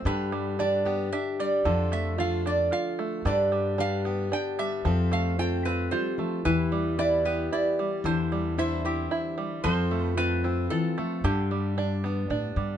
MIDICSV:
0, 0, Header, 1, 5, 480
1, 0, Start_track
1, 0, Tempo, 532387
1, 52, Time_signature, 3, 2, 24, 8
1, 11514, End_track
2, 0, Start_track
2, 0, Title_t, "Resonator guitar played with a steel bar"
2, 0, Program_c, 0, 25
2, 60, Note_on_c, 0, 71, 85
2, 503, Note_off_c, 0, 71, 0
2, 539, Note_on_c, 0, 74, 83
2, 1011, Note_off_c, 0, 74, 0
2, 1014, Note_on_c, 0, 76, 86
2, 1261, Note_off_c, 0, 76, 0
2, 1263, Note_on_c, 0, 74, 85
2, 1738, Note_on_c, 0, 76, 91
2, 1753, Note_off_c, 0, 74, 0
2, 1979, Note_off_c, 0, 76, 0
2, 1983, Note_on_c, 0, 77, 89
2, 2202, Note_off_c, 0, 77, 0
2, 2227, Note_on_c, 0, 74, 81
2, 2444, Note_off_c, 0, 74, 0
2, 2459, Note_on_c, 0, 77, 90
2, 2945, Note_on_c, 0, 74, 90
2, 2951, Note_off_c, 0, 77, 0
2, 3429, Note_on_c, 0, 77, 101
2, 3434, Note_off_c, 0, 74, 0
2, 3902, Note_off_c, 0, 77, 0
2, 3906, Note_on_c, 0, 79, 92
2, 4140, Note_on_c, 0, 76, 90
2, 4147, Note_off_c, 0, 79, 0
2, 4619, Note_off_c, 0, 76, 0
2, 4623, Note_on_c, 0, 77, 89
2, 4862, Note_on_c, 0, 79, 99
2, 4865, Note_off_c, 0, 77, 0
2, 5097, Note_on_c, 0, 71, 85
2, 5105, Note_off_c, 0, 79, 0
2, 5327, Note_off_c, 0, 71, 0
2, 5331, Note_on_c, 0, 72, 78
2, 5813, Note_off_c, 0, 72, 0
2, 5816, Note_on_c, 0, 71, 89
2, 6300, Note_on_c, 0, 74, 93
2, 6309, Note_off_c, 0, 71, 0
2, 6540, Note_on_c, 0, 71, 75
2, 6544, Note_off_c, 0, 74, 0
2, 6760, Note_off_c, 0, 71, 0
2, 6787, Note_on_c, 0, 74, 82
2, 7265, Note_on_c, 0, 72, 87
2, 7274, Note_off_c, 0, 74, 0
2, 7745, Note_on_c, 0, 76, 88
2, 7753, Note_off_c, 0, 72, 0
2, 7983, Note_on_c, 0, 67, 67
2, 7986, Note_off_c, 0, 76, 0
2, 8424, Note_off_c, 0, 67, 0
2, 8688, Note_on_c, 0, 72, 103
2, 9049, Note_off_c, 0, 72, 0
2, 9049, Note_on_c, 0, 71, 103
2, 9171, Note_off_c, 0, 71, 0
2, 9174, Note_on_c, 0, 71, 103
2, 9646, Note_off_c, 0, 71, 0
2, 9650, Note_on_c, 0, 69, 83
2, 10135, Note_off_c, 0, 69, 0
2, 10138, Note_on_c, 0, 67, 75
2, 11058, Note_off_c, 0, 67, 0
2, 11514, End_track
3, 0, Start_track
3, 0, Title_t, "Steel-string acoustic guitar"
3, 0, Program_c, 1, 25
3, 48, Note_on_c, 1, 43, 72
3, 52, Note_on_c, 1, 62, 60
3, 57, Note_on_c, 1, 67, 61
3, 535, Note_off_c, 1, 62, 0
3, 535, Note_off_c, 1, 67, 0
3, 538, Note_on_c, 1, 62, 55
3, 550, Note_on_c, 1, 67, 55
3, 555, Note_on_c, 1, 71, 61
3, 760, Note_off_c, 1, 67, 0
3, 770, Note_on_c, 1, 67, 57
3, 1463, Note_off_c, 1, 67, 0
3, 1476, Note_off_c, 1, 71, 0
3, 1486, Note_on_c, 1, 53, 76
3, 1491, Note_off_c, 1, 43, 0
3, 1492, Note_off_c, 1, 62, 0
3, 1495, Note_on_c, 1, 62, 60
3, 1502, Note_on_c, 1, 65, 60
3, 1507, Note_on_c, 1, 69, 69
3, 1967, Note_off_c, 1, 62, 0
3, 1971, Note_on_c, 1, 62, 56
3, 1972, Note_off_c, 1, 65, 0
3, 1977, Note_off_c, 1, 69, 0
3, 1983, Note_on_c, 1, 65, 58
3, 1988, Note_on_c, 1, 69, 63
3, 2208, Note_off_c, 1, 65, 0
3, 2218, Note_on_c, 1, 65, 55
3, 2901, Note_off_c, 1, 53, 0
3, 2904, Note_off_c, 1, 62, 0
3, 2907, Note_off_c, 1, 65, 0
3, 2930, Note_on_c, 1, 43, 73
3, 2937, Note_on_c, 1, 62, 64
3, 2941, Note_off_c, 1, 69, 0
3, 2946, Note_on_c, 1, 67, 63
3, 2949, Note_on_c, 1, 71, 69
3, 3405, Note_off_c, 1, 62, 0
3, 3412, Note_off_c, 1, 67, 0
3, 3416, Note_on_c, 1, 62, 56
3, 3418, Note_off_c, 1, 71, 0
3, 3423, Note_on_c, 1, 67, 57
3, 3429, Note_on_c, 1, 71, 63
3, 3652, Note_off_c, 1, 67, 0
3, 3663, Note_on_c, 1, 67, 59
3, 4346, Note_off_c, 1, 62, 0
3, 4349, Note_off_c, 1, 67, 0
3, 4352, Note_off_c, 1, 71, 0
3, 4371, Note_on_c, 1, 53, 70
3, 4372, Note_off_c, 1, 43, 0
3, 4378, Note_on_c, 1, 60, 61
3, 4383, Note_on_c, 1, 65, 59
3, 4391, Note_on_c, 1, 69, 69
3, 4849, Note_off_c, 1, 60, 0
3, 4858, Note_off_c, 1, 65, 0
3, 4860, Note_on_c, 1, 60, 56
3, 4862, Note_off_c, 1, 69, 0
3, 4869, Note_on_c, 1, 65, 56
3, 4873, Note_on_c, 1, 69, 59
3, 5094, Note_off_c, 1, 65, 0
3, 5105, Note_on_c, 1, 65, 52
3, 5344, Note_on_c, 1, 55, 60
3, 5560, Note_off_c, 1, 53, 0
3, 5570, Note_on_c, 1, 53, 59
3, 5579, Note_off_c, 1, 55, 0
3, 5790, Note_off_c, 1, 65, 0
3, 5812, Note_off_c, 1, 53, 0
3, 5816, Note_on_c, 1, 52, 71
3, 5817, Note_off_c, 1, 60, 0
3, 5823, Note_off_c, 1, 69, 0
3, 5824, Note_on_c, 1, 64, 64
3, 5829, Note_on_c, 1, 67, 63
3, 6295, Note_off_c, 1, 64, 0
3, 6298, Note_on_c, 1, 64, 58
3, 6301, Note_off_c, 1, 67, 0
3, 6305, Note_on_c, 1, 67, 57
3, 6316, Note_on_c, 1, 71, 61
3, 6535, Note_off_c, 1, 67, 0
3, 6539, Note_on_c, 1, 67, 55
3, 7225, Note_off_c, 1, 52, 0
3, 7227, Note_off_c, 1, 64, 0
3, 7227, Note_off_c, 1, 67, 0
3, 7235, Note_off_c, 1, 71, 0
3, 7254, Note_on_c, 1, 52, 76
3, 7260, Note_on_c, 1, 62, 62
3, 7265, Note_on_c, 1, 64, 65
3, 7725, Note_off_c, 1, 62, 0
3, 7729, Note_off_c, 1, 64, 0
3, 7735, Note_on_c, 1, 62, 57
3, 7739, Note_on_c, 1, 64, 59
3, 7748, Note_on_c, 1, 72, 67
3, 7966, Note_off_c, 1, 64, 0
3, 7977, Note_on_c, 1, 64, 56
3, 8665, Note_off_c, 1, 52, 0
3, 8665, Note_off_c, 1, 62, 0
3, 8671, Note_off_c, 1, 72, 0
3, 8690, Note_on_c, 1, 53, 79
3, 8694, Note_off_c, 1, 64, 0
3, 8697, Note_on_c, 1, 60, 66
3, 8701, Note_on_c, 1, 65, 65
3, 8706, Note_on_c, 1, 69, 70
3, 9163, Note_off_c, 1, 60, 0
3, 9170, Note_off_c, 1, 65, 0
3, 9174, Note_on_c, 1, 60, 55
3, 9176, Note_off_c, 1, 69, 0
3, 9181, Note_on_c, 1, 65, 58
3, 9187, Note_on_c, 1, 69, 63
3, 9408, Note_off_c, 1, 65, 0
3, 9419, Note_on_c, 1, 65, 57
3, 9650, Note_off_c, 1, 53, 0
3, 9659, Note_on_c, 1, 52, 64
3, 9895, Note_off_c, 1, 52, 0
3, 9908, Note_on_c, 1, 53, 58
3, 10106, Note_off_c, 1, 65, 0
3, 10132, Note_off_c, 1, 60, 0
3, 10139, Note_off_c, 1, 69, 0
3, 10140, Note_off_c, 1, 53, 0
3, 10140, Note_on_c, 1, 43, 71
3, 10148, Note_on_c, 1, 62, 65
3, 10610, Note_off_c, 1, 62, 0
3, 10621, Note_on_c, 1, 62, 56
3, 10856, Note_off_c, 1, 62, 0
3, 10871, Note_on_c, 1, 62, 55
3, 11514, Note_off_c, 1, 43, 0
3, 11514, Note_off_c, 1, 62, 0
3, 11514, End_track
4, 0, Start_track
4, 0, Title_t, "Five-string banjo"
4, 0, Program_c, 2, 105
4, 0, Note_on_c, 2, 57, 53
4, 0, Note_on_c, 2, 60, 55
4, 0, Note_on_c, 2, 65, 55
4, 54, Note_on_c, 2, 50, 75
4, 99, Note_off_c, 2, 57, 0
4, 100, Note_off_c, 2, 65, 0
4, 101, Note_off_c, 2, 60, 0
4, 292, Note_on_c, 2, 55, 54
4, 532, Note_on_c, 2, 62, 61
4, 777, Note_on_c, 2, 59, 53
4, 1013, Note_off_c, 2, 59, 0
4, 1017, Note_off_c, 2, 62, 0
4, 1017, Note_on_c, 2, 62, 60
4, 1247, Note_off_c, 2, 55, 0
4, 1258, Note_on_c, 2, 55, 53
4, 1480, Note_off_c, 2, 50, 0
4, 1491, Note_on_c, 2, 50, 76
4, 1544, Note_off_c, 2, 55, 0
4, 1730, Note_on_c, 2, 57, 54
4, 1969, Note_on_c, 2, 65, 64
4, 2212, Note_off_c, 2, 62, 0
4, 2216, Note_on_c, 2, 62, 53
4, 2443, Note_off_c, 2, 65, 0
4, 2454, Note_on_c, 2, 65, 63
4, 2684, Note_off_c, 2, 57, 0
4, 2694, Note_on_c, 2, 57, 55
4, 2924, Note_off_c, 2, 50, 0
4, 2935, Note_on_c, 2, 50, 77
4, 2982, Note_off_c, 2, 57, 0
4, 2982, Note_off_c, 2, 65, 0
4, 2983, Note_off_c, 2, 62, 0
4, 3173, Note_on_c, 2, 55, 54
4, 3410, Note_on_c, 2, 62, 64
4, 3652, Note_on_c, 2, 59, 52
4, 3882, Note_off_c, 2, 62, 0
4, 3893, Note_on_c, 2, 62, 59
4, 4125, Note_off_c, 2, 55, 0
4, 4136, Note_on_c, 2, 55, 60
4, 4368, Note_off_c, 2, 50, 0
4, 4372, Note_on_c, 2, 53, 71
4, 4421, Note_off_c, 2, 59, 0
4, 4421, Note_off_c, 2, 62, 0
4, 4423, Note_off_c, 2, 55, 0
4, 4612, Note_on_c, 2, 57, 54
4, 4859, Note_on_c, 2, 65, 63
4, 5100, Note_on_c, 2, 60, 51
4, 5329, Note_off_c, 2, 65, 0
4, 5339, Note_on_c, 2, 65, 61
4, 5567, Note_off_c, 2, 57, 0
4, 5578, Note_on_c, 2, 57, 56
4, 5813, Note_off_c, 2, 53, 0
4, 5818, Note_on_c, 2, 52, 70
4, 5864, Note_off_c, 2, 57, 0
4, 5864, Note_off_c, 2, 65, 0
4, 5865, Note_off_c, 2, 60, 0
4, 6057, Note_on_c, 2, 55, 53
4, 6301, Note_on_c, 2, 64, 63
4, 6542, Note_on_c, 2, 59, 51
4, 6773, Note_off_c, 2, 64, 0
4, 6784, Note_on_c, 2, 64, 60
4, 7015, Note_off_c, 2, 55, 0
4, 7025, Note_on_c, 2, 55, 55
4, 7255, Note_off_c, 2, 52, 0
4, 7261, Note_on_c, 2, 50, 73
4, 7305, Note_off_c, 2, 59, 0
4, 7306, Note_off_c, 2, 64, 0
4, 7307, Note_off_c, 2, 55, 0
4, 7501, Note_on_c, 2, 55, 55
4, 7741, Note_on_c, 2, 64, 67
4, 7978, Note_on_c, 2, 60, 55
4, 8204, Note_off_c, 2, 64, 0
4, 8215, Note_on_c, 2, 64, 65
4, 8443, Note_off_c, 2, 55, 0
4, 8454, Note_on_c, 2, 55, 57
4, 8690, Note_off_c, 2, 50, 0
4, 8694, Note_on_c, 2, 53, 82
4, 8741, Note_off_c, 2, 55, 0
4, 8742, Note_off_c, 2, 64, 0
4, 8743, Note_off_c, 2, 60, 0
4, 8936, Note_on_c, 2, 57, 56
4, 9172, Note_on_c, 2, 65, 63
4, 9414, Note_on_c, 2, 60, 58
4, 9647, Note_off_c, 2, 65, 0
4, 9658, Note_on_c, 2, 65, 62
4, 9886, Note_off_c, 2, 57, 0
4, 9897, Note_on_c, 2, 57, 57
4, 10132, Note_off_c, 2, 53, 0
4, 10138, Note_on_c, 2, 50, 78
4, 10180, Note_off_c, 2, 60, 0
4, 10182, Note_off_c, 2, 57, 0
4, 10182, Note_off_c, 2, 65, 0
4, 10378, Note_on_c, 2, 55, 58
4, 10619, Note_on_c, 2, 62, 65
4, 10855, Note_on_c, 2, 59, 52
4, 11083, Note_off_c, 2, 62, 0
4, 11094, Note_on_c, 2, 62, 61
4, 11320, Note_off_c, 2, 55, 0
4, 11331, Note_on_c, 2, 55, 56
4, 11514, Note_off_c, 2, 50, 0
4, 11514, Note_off_c, 2, 55, 0
4, 11514, Note_off_c, 2, 59, 0
4, 11514, Note_off_c, 2, 62, 0
4, 11514, End_track
5, 0, Start_track
5, 0, Title_t, "Upright bass"
5, 0, Program_c, 3, 32
5, 47, Note_on_c, 3, 43, 88
5, 974, Note_off_c, 3, 43, 0
5, 1492, Note_on_c, 3, 41, 90
5, 2417, Note_off_c, 3, 41, 0
5, 2932, Note_on_c, 3, 43, 94
5, 3857, Note_off_c, 3, 43, 0
5, 4376, Note_on_c, 3, 41, 90
5, 5298, Note_off_c, 3, 41, 0
5, 5821, Note_on_c, 3, 40, 89
5, 6741, Note_off_c, 3, 40, 0
5, 7249, Note_on_c, 3, 40, 88
5, 8174, Note_off_c, 3, 40, 0
5, 8694, Note_on_c, 3, 41, 92
5, 9617, Note_off_c, 3, 41, 0
5, 10134, Note_on_c, 3, 43, 95
5, 11056, Note_off_c, 3, 43, 0
5, 11090, Note_on_c, 3, 45, 80
5, 11306, Note_off_c, 3, 45, 0
5, 11327, Note_on_c, 3, 43, 77
5, 11514, Note_off_c, 3, 43, 0
5, 11514, End_track
0, 0, End_of_file